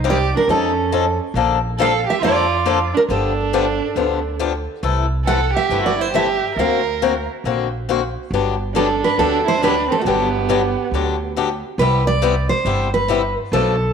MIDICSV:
0, 0, Header, 1, 5, 480
1, 0, Start_track
1, 0, Tempo, 434153
1, 1497, Time_signature, 4, 2, 24, 8
1, 15403, End_track
2, 0, Start_track
2, 0, Title_t, "Steel-string acoustic guitar"
2, 0, Program_c, 0, 25
2, 109, Note_on_c, 0, 74, 90
2, 404, Note_off_c, 0, 74, 0
2, 410, Note_on_c, 0, 70, 70
2, 552, Note_off_c, 0, 70, 0
2, 557, Note_on_c, 0, 69, 76
2, 1295, Note_off_c, 0, 69, 0
2, 2006, Note_on_c, 0, 77, 91
2, 2312, Note_off_c, 0, 77, 0
2, 2322, Note_on_c, 0, 76, 84
2, 2463, Note_off_c, 0, 76, 0
2, 2480, Note_on_c, 0, 74, 88
2, 3283, Note_on_c, 0, 70, 74
2, 3284, Note_off_c, 0, 74, 0
2, 3338, Note_off_c, 0, 70, 0
2, 3436, Note_on_c, 0, 69, 69
2, 4823, Note_off_c, 0, 69, 0
2, 5830, Note_on_c, 0, 78, 86
2, 6146, Note_off_c, 0, 78, 0
2, 6152, Note_on_c, 0, 76, 77
2, 6448, Note_off_c, 0, 76, 0
2, 6478, Note_on_c, 0, 74, 74
2, 6645, Note_off_c, 0, 74, 0
2, 6645, Note_on_c, 0, 72, 73
2, 6797, Note_off_c, 0, 72, 0
2, 6804, Note_on_c, 0, 76, 77
2, 7287, Note_off_c, 0, 76, 0
2, 7293, Note_on_c, 0, 77, 77
2, 8026, Note_off_c, 0, 77, 0
2, 9687, Note_on_c, 0, 69, 79
2, 9994, Note_off_c, 0, 69, 0
2, 9998, Note_on_c, 0, 71, 81
2, 10156, Note_off_c, 0, 71, 0
2, 10160, Note_on_c, 0, 69, 89
2, 10444, Note_off_c, 0, 69, 0
2, 10483, Note_on_c, 0, 72, 91
2, 10643, Note_off_c, 0, 72, 0
2, 10656, Note_on_c, 0, 71, 88
2, 10962, Note_off_c, 0, 71, 0
2, 10967, Note_on_c, 0, 69, 78
2, 11070, Note_off_c, 0, 69, 0
2, 11072, Note_on_c, 0, 66, 54
2, 11117, Note_off_c, 0, 66, 0
2, 11128, Note_on_c, 0, 67, 70
2, 12514, Note_off_c, 0, 67, 0
2, 13038, Note_on_c, 0, 71, 91
2, 13341, Note_off_c, 0, 71, 0
2, 13345, Note_on_c, 0, 74, 91
2, 13808, Note_off_c, 0, 74, 0
2, 13812, Note_on_c, 0, 72, 82
2, 14261, Note_off_c, 0, 72, 0
2, 14304, Note_on_c, 0, 71, 78
2, 14747, Note_off_c, 0, 71, 0
2, 14959, Note_on_c, 0, 69, 84
2, 15403, Note_off_c, 0, 69, 0
2, 15403, End_track
3, 0, Start_track
3, 0, Title_t, "Violin"
3, 0, Program_c, 1, 40
3, 89, Note_on_c, 1, 67, 78
3, 364, Note_off_c, 1, 67, 0
3, 395, Note_on_c, 1, 62, 67
3, 539, Note_off_c, 1, 62, 0
3, 550, Note_on_c, 1, 61, 57
3, 1291, Note_off_c, 1, 61, 0
3, 1978, Note_on_c, 1, 69, 70
3, 2267, Note_off_c, 1, 69, 0
3, 2287, Note_on_c, 1, 67, 77
3, 2444, Note_off_c, 1, 67, 0
3, 2453, Note_on_c, 1, 65, 80
3, 3203, Note_off_c, 1, 65, 0
3, 3250, Note_on_c, 1, 62, 56
3, 3325, Note_off_c, 1, 62, 0
3, 3432, Note_on_c, 1, 62, 68
3, 4821, Note_off_c, 1, 62, 0
3, 5810, Note_on_c, 1, 69, 75
3, 6104, Note_off_c, 1, 69, 0
3, 6120, Note_on_c, 1, 67, 79
3, 6430, Note_off_c, 1, 67, 0
3, 6455, Note_on_c, 1, 66, 68
3, 6615, Note_on_c, 1, 64, 62
3, 6632, Note_off_c, 1, 66, 0
3, 6772, Note_off_c, 1, 64, 0
3, 6779, Note_on_c, 1, 67, 77
3, 7226, Note_off_c, 1, 67, 0
3, 7258, Note_on_c, 1, 70, 69
3, 8008, Note_off_c, 1, 70, 0
3, 9661, Note_on_c, 1, 62, 65
3, 9953, Note_off_c, 1, 62, 0
3, 9964, Note_on_c, 1, 62, 78
3, 10127, Note_off_c, 1, 62, 0
3, 10141, Note_on_c, 1, 62, 77
3, 10434, Note_off_c, 1, 62, 0
3, 10459, Note_on_c, 1, 64, 73
3, 10615, Note_off_c, 1, 64, 0
3, 10623, Note_on_c, 1, 62, 81
3, 10915, Note_off_c, 1, 62, 0
3, 10935, Note_on_c, 1, 60, 66
3, 11038, Note_off_c, 1, 60, 0
3, 11045, Note_on_c, 1, 57, 45
3, 11099, Note_off_c, 1, 57, 0
3, 11108, Note_on_c, 1, 59, 72
3, 12504, Note_off_c, 1, 59, 0
3, 15403, End_track
4, 0, Start_track
4, 0, Title_t, "Steel-string acoustic guitar"
4, 0, Program_c, 2, 25
4, 44, Note_on_c, 2, 55, 84
4, 45, Note_on_c, 2, 48, 75
4, 52, Note_on_c, 2, 58, 79
4, 52, Note_on_c, 2, 63, 88
4, 52, Note_on_c, 2, 67, 83
4, 180, Note_off_c, 2, 55, 0
4, 181, Note_off_c, 2, 48, 0
4, 184, Note_off_c, 2, 58, 0
4, 184, Note_off_c, 2, 63, 0
4, 184, Note_off_c, 2, 67, 0
4, 542, Note_on_c, 2, 61, 58
4, 546, Note_on_c, 2, 53, 55
4, 550, Note_on_c, 2, 63, 63
4, 556, Note_on_c, 2, 69, 67
4, 784, Note_off_c, 2, 61, 0
4, 785, Note_off_c, 2, 53, 0
4, 788, Note_off_c, 2, 63, 0
4, 791, Note_off_c, 2, 69, 0
4, 1020, Note_on_c, 2, 53, 80
4, 1022, Note_on_c, 2, 61, 80
4, 1023, Note_on_c, 2, 63, 88
4, 1035, Note_on_c, 2, 69, 75
4, 1148, Note_off_c, 2, 53, 0
4, 1149, Note_off_c, 2, 61, 0
4, 1149, Note_off_c, 2, 63, 0
4, 1155, Note_off_c, 2, 69, 0
4, 1496, Note_on_c, 2, 50, 53
4, 1506, Note_on_c, 2, 58, 63
4, 1507, Note_on_c, 2, 53, 59
4, 1513, Note_on_c, 2, 62, 59
4, 1515, Note_on_c, 2, 69, 61
4, 1741, Note_off_c, 2, 50, 0
4, 1745, Note_off_c, 2, 58, 0
4, 1746, Note_off_c, 2, 53, 0
4, 1749, Note_off_c, 2, 62, 0
4, 1750, Note_off_c, 2, 69, 0
4, 1972, Note_on_c, 2, 50, 80
4, 1985, Note_on_c, 2, 53, 84
4, 1988, Note_on_c, 2, 58, 79
4, 1989, Note_on_c, 2, 69, 92
4, 1992, Note_on_c, 2, 62, 91
4, 2104, Note_off_c, 2, 50, 0
4, 2110, Note_off_c, 2, 53, 0
4, 2112, Note_off_c, 2, 58, 0
4, 2112, Note_off_c, 2, 69, 0
4, 2113, Note_off_c, 2, 62, 0
4, 2461, Note_on_c, 2, 50, 62
4, 2463, Note_on_c, 2, 53, 53
4, 2465, Note_on_c, 2, 62, 67
4, 2466, Note_on_c, 2, 58, 63
4, 2468, Note_on_c, 2, 69, 72
4, 2703, Note_off_c, 2, 50, 0
4, 2704, Note_off_c, 2, 53, 0
4, 2705, Note_off_c, 2, 58, 0
4, 2705, Note_off_c, 2, 62, 0
4, 2706, Note_off_c, 2, 69, 0
4, 2935, Note_on_c, 2, 50, 78
4, 2938, Note_on_c, 2, 62, 81
4, 2939, Note_on_c, 2, 58, 83
4, 2940, Note_on_c, 2, 53, 74
4, 2953, Note_on_c, 2, 69, 83
4, 3065, Note_off_c, 2, 50, 0
4, 3067, Note_off_c, 2, 53, 0
4, 3067, Note_off_c, 2, 58, 0
4, 3067, Note_off_c, 2, 62, 0
4, 3074, Note_off_c, 2, 69, 0
4, 3424, Note_on_c, 2, 50, 50
4, 3424, Note_on_c, 2, 53, 50
4, 3429, Note_on_c, 2, 59, 60
4, 3433, Note_on_c, 2, 62, 60
4, 3435, Note_on_c, 2, 67, 62
4, 3664, Note_off_c, 2, 53, 0
4, 3665, Note_off_c, 2, 50, 0
4, 3667, Note_off_c, 2, 59, 0
4, 3669, Note_off_c, 2, 62, 0
4, 3670, Note_off_c, 2, 67, 0
4, 3905, Note_on_c, 2, 50, 82
4, 3910, Note_on_c, 2, 53, 82
4, 3910, Note_on_c, 2, 67, 87
4, 3912, Note_on_c, 2, 59, 86
4, 3915, Note_on_c, 2, 62, 79
4, 4030, Note_off_c, 2, 50, 0
4, 4033, Note_off_c, 2, 53, 0
4, 4033, Note_off_c, 2, 67, 0
4, 4034, Note_off_c, 2, 59, 0
4, 4035, Note_off_c, 2, 62, 0
4, 4377, Note_on_c, 2, 50, 60
4, 4384, Note_on_c, 2, 53, 59
4, 4386, Note_on_c, 2, 59, 55
4, 4389, Note_on_c, 2, 62, 61
4, 4396, Note_on_c, 2, 67, 67
4, 4621, Note_off_c, 2, 50, 0
4, 4625, Note_off_c, 2, 53, 0
4, 4626, Note_off_c, 2, 59, 0
4, 4627, Note_off_c, 2, 62, 0
4, 4631, Note_off_c, 2, 67, 0
4, 4858, Note_on_c, 2, 53, 75
4, 4862, Note_on_c, 2, 50, 76
4, 4866, Note_on_c, 2, 62, 83
4, 4869, Note_on_c, 2, 59, 73
4, 4877, Note_on_c, 2, 67, 79
4, 4987, Note_off_c, 2, 53, 0
4, 4989, Note_off_c, 2, 50, 0
4, 4991, Note_off_c, 2, 62, 0
4, 4992, Note_off_c, 2, 59, 0
4, 4997, Note_off_c, 2, 67, 0
4, 5338, Note_on_c, 2, 52, 58
4, 5342, Note_on_c, 2, 57, 55
4, 5344, Note_on_c, 2, 48, 55
4, 5350, Note_on_c, 2, 69, 66
4, 5352, Note_on_c, 2, 64, 64
4, 5582, Note_off_c, 2, 52, 0
4, 5584, Note_off_c, 2, 57, 0
4, 5585, Note_off_c, 2, 48, 0
4, 5588, Note_off_c, 2, 69, 0
4, 5589, Note_off_c, 2, 64, 0
4, 5830, Note_on_c, 2, 52, 82
4, 5835, Note_on_c, 2, 48, 77
4, 5836, Note_on_c, 2, 64, 86
4, 5837, Note_on_c, 2, 57, 71
4, 5845, Note_on_c, 2, 69, 80
4, 5953, Note_off_c, 2, 52, 0
4, 5956, Note_off_c, 2, 48, 0
4, 5957, Note_off_c, 2, 57, 0
4, 5957, Note_off_c, 2, 64, 0
4, 5961, Note_off_c, 2, 69, 0
4, 6306, Note_on_c, 2, 48, 55
4, 6310, Note_on_c, 2, 52, 63
4, 6315, Note_on_c, 2, 57, 59
4, 6323, Note_on_c, 2, 69, 67
4, 6324, Note_on_c, 2, 64, 61
4, 6546, Note_off_c, 2, 48, 0
4, 6548, Note_off_c, 2, 52, 0
4, 6551, Note_off_c, 2, 57, 0
4, 6555, Note_off_c, 2, 69, 0
4, 6556, Note_off_c, 2, 64, 0
4, 6786, Note_on_c, 2, 48, 80
4, 6795, Note_on_c, 2, 52, 76
4, 6799, Note_on_c, 2, 57, 68
4, 6803, Note_on_c, 2, 64, 76
4, 6804, Note_on_c, 2, 69, 83
4, 6912, Note_off_c, 2, 48, 0
4, 6917, Note_off_c, 2, 52, 0
4, 6919, Note_off_c, 2, 57, 0
4, 6920, Note_off_c, 2, 64, 0
4, 6921, Note_off_c, 2, 69, 0
4, 7284, Note_on_c, 2, 50, 59
4, 7286, Note_on_c, 2, 60, 66
4, 7287, Note_on_c, 2, 58, 56
4, 7294, Note_on_c, 2, 66, 63
4, 7296, Note_on_c, 2, 72, 61
4, 7517, Note_off_c, 2, 50, 0
4, 7518, Note_off_c, 2, 58, 0
4, 7518, Note_off_c, 2, 60, 0
4, 7521, Note_off_c, 2, 66, 0
4, 7523, Note_off_c, 2, 72, 0
4, 7762, Note_on_c, 2, 58, 80
4, 7764, Note_on_c, 2, 50, 76
4, 7765, Note_on_c, 2, 60, 78
4, 7767, Note_on_c, 2, 66, 88
4, 7774, Note_on_c, 2, 72, 89
4, 7881, Note_off_c, 2, 58, 0
4, 7882, Note_off_c, 2, 50, 0
4, 7882, Note_off_c, 2, 60, 0
4, 7883, Note_off_c, 2, 66, 0
4, 7887, Note_off_c, 2, 72, 0
4, 8239, Note_on_c, 2, 50, 55
4, 8243, Note_on_c, 2, 58, 65
4, 8252, Note_on_c, 2, 60, 61
4, 8256, Note_on_c, 2, 66, 61
4, 8258, Note_on_c, 2, 72, 65
4, 8475, Note_off_c, 2, 50, 0
4, 8477, Note_off_c, 2, 58, 0
4, 8481, Note_off_c, 2, 60, 0
4, 8483, Note_off_c, 2, 66, 0
4, 8484, Note_off_c, 2, 72, 0
4, 8720, Note_on_c, 2, 50, 75
4, 8723, Note_on_c, 2, 60, 67
4, 8724, Note_on_c, 2, 58, 75
4, 8734, Note_on_c, 2, 72, 91
4, 8737, Note_on_c, 2, 66, 83
4, 8841, Note_off_c, 2, 50, 0
4, 8842, Note_off_c, 2, 60, 0
4, 8843, Note_off_c, 2, 58, 0
4, 8848, Note_off_c, 2, 72, 0
4, 8850, Note_off_c, 2, 66, 0
4, 9215, Note_on_c, 2, 59, 64
4, 9217, Note_on_c, 2, 50, 58
4, 9218, Note_on_c, 2, 54, 58
4, 9220, Note_on_c, 2, 67, 65
4, 9223, Note_on_c, 2, 62, 57
4, 9444, Note_off_c, 2, 50, 0
4, 9444, Note_off_c, 2, 59, 0
4, 9445, Note_off_c, 2, 54, 0
4, 9446, Note_off_c, 2, 67, 0
4, 9448, Note_off_c, 2, 62, 0
4, 9672, Note_on_c, 2, 50, 76
4, 9680, Note_on_c, 2, 54, 73
4, 9685, Note_on_c, 2, 59, 90
4, 9687, Note_on_c, 2, 62, 83
4, 9693, Note_on_c, 2, 67, 85
4, 9798, Note_off_c, 2, 50, 0
4, 9802, Note_off_c, 2, 54, 0
4, 9804, Note_off_c, 2, 59, 0
4, 9805, Note_off_c, 2, 62, 0
4, 9808, Note_off_c, 2, 67, 0
4, 10158, Note_on_c, 2, 50, 58
4, 10161, Note_on_c, 2, 59, 57
4, 10164, Note_on_c, 2, 54, 59
4, 10169, Note_on_c, 2, 62, 69
4, 10175, Note_on_c, 2, 67, 70
4, 10396, Note_off_c, 2, 50, 0
4, 10398, Note_off_c, 2, 59, 0
4, 10399, Note_off_c, 2, 54, 0
4, 10401, Note_off_c, 2, 62, 0
4, 10404, Note_off_c, 2, 67, 0
4, 10640, Note_on_c, 2, 50, 70
4, 10650, Note_on_c, 2, 54, 74
4, 10650, Note_on_c, 2, 59, 77
4, 10657, Note_on_c, 2, 62, 76
4, 10658, Note_on_c, 2, 67, 85
4, 10763, Note_off_c, 2, 50, 0
4, 10767, Note_off_c, 2, 54, 0
4, 10768, Note_off_c, 2, 59, 0
4, 10771, Note_off_c, 2, 62, 0
4, 10771, Note_off_c, 2, 67, 0
4, 11122, Note_on_c, 2, 50, 53
4, 11127, Note_on_c, 2, 54, 61
4, 11127, Note_on_c, 2, 59, 59
4, 11131, Note_on_c, 2, 62, 61
4, 11140, Note_on_c, 2, 67, 65
4, 11359, Note_off_c, 2, 50, 0
4, 11361, Note_off_c, 2, 54, 0
4, 11361, Note_off_c, 2, 59, 0
4, 11363, Note_off_c, 2, 62, 0
4, 11368, Note_off_c, 2, 67, 0
4, 11595, Note_on_c, 2, 50, 73
4, 11603, Note_on_c, 2, 54, 85
4, 11605, Note_on_c, 2, 59, 90
4, 11610, Note_on_c, 2, 67, 86
4, 11613, Note_on_c, 2, 62, 82
4, 11721, Note_off_c, 2, 50, 0
4, 11724, Note_off_c, 2, 54, 0
4, 11725, Note_off_c, 2, 59, 0
4, 11728, Note_off_c, 2, 67, 0
4, 11729, Note_off_c, 2, 62, 0
4, 12092, Note_on_c, 2, 50, 57
4, 12096, Note_on_c, 2, 59, 64
4, 12102, Note_on_c, 2, 54, 61
4, 12103, Note_on_c, 2, 62, 62
4, 12108, Note_on_c, 2, 67, 65
4, 12324, Note_off_c, 2, 50, 0
4, 12326, Note_off_c, 2, 59, 0
4, 12329, Note_off_c, 2, 54, 0
4, 12330, Note_off_c, 2, 62, 0
4, 12332, Note_off_c, 2, 67, 0
4, 12565, Note_on_c, 2, 50, 66
4, 12571, Note_on_c, 2, 54, 70
4, 12571, Note_on_c, 2, 59, 76
4, 12579, Note_on_c, 2, 62, 78
4, 12580, Note_on_c, 2, 67, 80
4, 12686, Note_off_c, 2, 50, 0
4, 12689, Note_off_c, 2, 54, 0
4, 12689, Note_off_c, 2, 59, 0
4, 12693, Note_off_c, 2, 62, 0
4, 12693, Note_off_c, 2, 67, 0
4, 13052, Note_on_c, 2, 48, 60
4, 13053, Note_on_c, 2, 55, 63
4, 13059, Note_on_c, 2, 59, 61
4, 13061, Note_on_c, 2, 64, 66
4, 13063, Note_on_c, 2, 67, 65
4, 13283, Note_off_c, 2, 48, 0
4, 13284, Note_off_c, 2, 55, 0
4, 13287, Note_off_c, 2, 59, 0
4, 13288, Note_off_c, 2, 64, 0
4, 13289, Note_off_c, 2, 67, 0
4, 13508, Note_on_c, 2, 55, 76
4, 13512, Note_on_c, 2, 48, 89
4, 13518, Note_on_c, 2, 59, 85
4, 13520, Note_on_c, 2, 64, 94
4, 13526, Note_on_c, 2, 67, 94
4, 13636, Note_off_c, 2, 55, 0
4, 13639, Note_off_c, 2, 48, 0
4, 13642, Note_off_c, 2, 59, 0
4, 13643, Note_off_c, 2, 64, 0
4, 13646, Note_off_c, 2, 67, 0
4, 13992, Note_on_c, 2, 48, 62
4, 13992, Note_on_c, 2, 55, 68
4, 14001, Note_on_c, 2, 64, 72
4, 14002, Note_on_c, 2, 59, 72
4, 14002, Note_on_c, 2, 67, 67
4, 14233, Note_off_c, 2, 48, 0
4, 14233, Note_off_c, 2, 55, 0
4, 14237, Note_off_c, 2, 64, 0
4, 14238, Note_off_c, 2, 59, 0
4, 14238, Note_off_c, 2, 67, 0
4, 14465, Note_on_c, 2, 48, 79
4, 14475, Note_on_c, 2, 55, 83
4, 14476, Note_on_c, 2, 59, 77
4, 14485, Note_on_c, 2, 67, 83
4, 14488, Note_on_c, 2, 64, 88
4, 14594, Note_off_c, 2, 48, 0
4, 14599, Note_off_c, 2, 55, 0
4, 14599, Note_off_c, 2, 59, 0
4, 14604, Note_off_c, 2, 67, 0
4, 14606, Note_off_c, 2, 64, 0
4, 14964, Note_on_c, 2, 47, 67
4, 14964, Note_on_c, 2, 53, 67
4, 14966, Note_on_c, 2, 57, 69
4, 14969, Note_on_c, 2, 62, 72
4, 14973, Note_on_c, 2, 69, 74
4, 15197, Note_off_c, 2, 47, 0
4, 15197, Note_off_c, 2, 53, 0
4, 15198, Note_off_c, 2, 57, 0
4, 15200, Note_off_c, 2, 62, 0
4, 15202, Note_off_c, 2, 69, 0
4, 15403, End_track
5, 0, Start_track
5, 0, Title_t, "Upright bass"
5, 0, Program_c, 3, 32
5, 0, Note_on_c, 3, 36, 84
5, 343, Note_off_c, 3, 36, 0
5, 527, Note_on_c, 3, 41, 78
5, 1299, Note_off_c, 3, 41, 0
5, 1480, Note_on_c, 3, 34, 83
5, 2255, Note_off_c, 3, 34, 0
5, 2445, Note_on_c, 3, 41, 72
5, 3218, Note_off_c, 3, 41, 0
5, 3412, Note_on_c, 3, 31, 80
5, 4182, Note_off_c, 3, 31, 0
5, 4374, Note_on_c, 3, 38, 66
5, 5144, Note_off_c, 3, 38, 0
5, 5339, Note_on_c, 3, 36, 83
5, 6108, Note_off_c, 3, 36, 0
5, 6294, Note_on_c, 3, 31, 73
5, 7065, Note_off_c, 3, 31, 0
5, 7257, Note_on_c, 3, 38, 79
5, 8028, Note_off_c, 3, 38, 0
5, 8226, Note_on_c, 3, 34, 65
5, 8994, Note_off_c, 3, 34, 0
5, 9183, Note_on_c, 3, 31, 86
5, 9953, Note_off_c, 3, 31, 0
5, 10149, Note_on_c, 3, 38, 76
5, 10917, Note_off_c, 3, 38, 0
5, 11113, Note_on_c, 3, 31, 81
5, 11879, Note_off_c, 3, 31, 0
5, 12066, Note_on_c, 3, 38, 70
5, 12834, Note_off_c, 3, 38, 0
5, 13024, Note_on_c, 3, 36, 90
5, 13793, Note_off_c, 3, 36, 0
5, 13983, Note_on_c, 3, 31, 78
5, 14751, Note_off_c, 3, 31, 0
5, 14945, Note_on_c, 3, 35, 86
5, 15403, Note_off_c, 3, 35, 0
5, 15403, End_track
0, 0, End_of_file